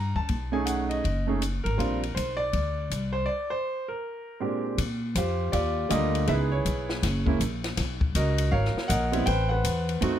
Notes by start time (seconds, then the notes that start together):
Already playing: G2 A#5
0.16 F#2 A5, kick
0.29 B1, kick, ride
0.52 A3 C#4 D#4 G#4 G#5
0.66 F#5, hi-hat pedal, ride
0.89 D#5, ride
1.04 F#1, kick, ride
1.27 A3 C#4 D#4 G#4
1.42 hi-hat pedal, ride
1.64 G#1 A#4, ride
1.78 A#1 G3 C4 D4 F4, kick, ride
2.03 ride
2.15 B1 C5, hi-hat pedal, ride
2.37 D5
2.53 D2, kick, ride
2.90 C2, hi-hat pedal, ride
3.13 C5
3.26 D5
3.50 C5
3.88 A#4
4.40 A#2 G#3 C4 D4 G4
4.78 A#2, kick, ride
5.15 F2 F4 G4 C5, kick, hi-hat pedal, ride
5.52 D#2 F4 G4 D5, kick, ride
5.89 D2 D3 G3 A#3 F4 G4 A#4 D#5, kick, hi-hat pedal, ride
6.15 ride
6.26 C#2 G#3 B3 D#4 E4 G#4 B4 E5, kick, ride
6.52 E4 G#4 C#5
6.65 B1, kick, hi-hat pedal, ride
6.89 snare
7.03 F#1, kick, snare, ride
7.26 G#3 A#3 C#4 E4, kick
7.40 A#1, kick, hi-hat pedal, ride
7.64 snare, ride
7.77 B1, kick, snare, ride
8.01 kick
8.15 C#2 F#4 A#4 D#5, kick, hi-hat pedal, ride
8.38 ride
8.52 G#1 A#4 C#5 F5, kick
8.65 snare
8.74 muted upright bass stroke, snare
8.88 A#1 A#4 D#5 F#5, kick, hi-hat pedal, ride
9.12 G3 B3 C4 E4, ride
9.26 A1 B4 C5 G5, kick, ride
9.49 B4 C5 F#5
9.64 E2, kick, hi-hat pedal, ride
9.89 ride
10.01 F#2 A3 C4 D#4 F#4, kick, ride